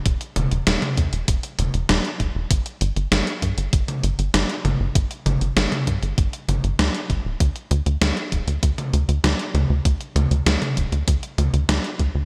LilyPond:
<<
  \new Staff \with { instrumentName = "Analog synth bass" } { \clef bass \time 4/4 \key g \major \tempo 4 = 98 e,,16 r16 e,,16 e,,16 e,,16 r16 e,16 e,,16 e,,16 r16 e,,16 e,,16 e,,16 r16 e,,16 e,,16 | g,,16 r16 g,,16 g,,16 g,,16 r16 g,16 g,,16 g,,16 r16 g,,16 g,,16 g,,16 r16 g,,16 g,,16 | g,,16 r16 g,,16 g,,16 g,,16 r16 g,16 g,,16 g,,16 r16 g,,16 g,,16 d,16 r16 g,,16 d,,16 | d,16 r16 d,16 d,16 d,16 r16 d,,16 d,16 d,16 r16 d,16 d,16 d,16 r16 d,16 d,16 |
d,16 r16 d,16 d,16 d,16 r16 d,,16 d,16 d,16 r16 d,16 d,16 d,16 r16 d,16 d,16 | }
  \new DrumStaff \with { instrumentName = "Drums" } \drummode { \time 4/4 <hh bd>16 hh16 <hh toml>16 hh16 <hh sn>16 <hh toml>16 <hh bd>16 hh16 <hh bd>16 hh16 <hh toml>16 hh16 <hh sn>16 hh16 <hh bd>8 | <hh bd>16 hh16 hh16 hh16 <hh sn>16 hh16 <hh bd>16 hh16 <hh bd>16 <hh toml>16 hh16 hh16 <hh sn>16 hh16 <hh toml>8 | <hh bd>16 hh16 <hh toml>16 hh16 <hh sn>16 <hh toml>16 <hh bd>16 hh16 <hh bd>16 hh16 <hh toml>16 hh16 <hh sn>16 hh16 <hh bd>8 | <hh bd>16 hh16 hh16 hh16 <hh sn>16 hh16 <hh bd>16 hh16 <hh bd>16 <hh toml>16 hh16 hh16 <hh sn>16 hh16 <hh toml>8 |
<hh bd>16 hh16 <hh toml>16 hh16 <hh sn>16 <hh toml>16 <hh bd>16 hh16 <hh bd>16 hh16 <hh toml>16 hh16 <hh sn>16 hh16 <hh bd>8 | }
>>